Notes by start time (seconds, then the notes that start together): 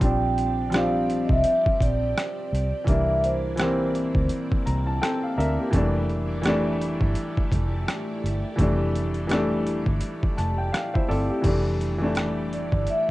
0.00 A#1 F3 G3 C4 G4 D5, kick, closed hi-hat
0.04 D4 G5
0.38 closed hi-hat
0.70 F3 G3 C4, closed hi-hat
0.74 D4 F5, cross-stick
1.10 closed hi-hat
1.24 D#5
1.29 C2 E5, kick
1.44 closed hi-hat
1.66 kick
1.80 A#1 D5, kick, closed hi-hat
2.17 cross-stick, closed hi-hat
2.53 C2, closed hi-hat
2.84 C2 E3 G3 A#3 E4 D5, kick, closed hi-hat
2.89 D4 E5
3.24 C5, closed hi-hat
3.56 E3 G3 A#3, cross-stick, closed hi-hat
3.61 C4
3.95 closed hi-hat
4.15 D2, kick
4.29 closed hi-hat
4.52 kick
4.66 C2 A#5, closed hi-hat
4.87 A5
5.02 C4 A4 G5, cross-stick, closed hi-hat
5.23 F5
5.38 D2 D4 A#4 E5, closed hi-hat
5.59 A#3 G4
5.71 F1 E3 G3 A3 G4, kick, closed hi-hat
5.76 D4
6.09 closed hi-hat
6.42 E3 G3 A3, cross-stick, closed hi-hat
6.47 D4
6.81 closed hi-hat
7.01 G1, kick
7.15 closed hi-hat
7.37 kick
7.52 F1, kick, closed hi-hat
7.88 cross-stick, closed hi-hat
8.24 G1, closed hi-hat
8.56 F1 E3 G3 A3, kick, closed hi-hat
8.62 D4
8.95 closed hi-hat
9.14 closed hi-hat
9.27 E3 G3 A3, closed hi-hat
9.31 D4, cross-stick
9.67 closed hi-hat
9.86 G1, kick
10.01 closed hi-hat
10.23 kick
10.37 F1 A5, cross-stick, closed hi-hat
10.58 G5
10.72 F5, cross-stick, closed hi-hat
10.94 E4 C5 E5, kick
11.08 G1 C4 A4 D5, open hi-hat
11.30 G4
11.41 F1 E3 G3 A3 E4 G4 D5, kick, closed hi-hat, crash
11.47 D4
11.81 closed hi-hat
11.98 E3 G3 A3
12.04 D4
12.15 cross-stick, closed hi-hat
12.53 D5, closed hi-hat
12.72 G1, kick
12.87 E5, closed hi-hat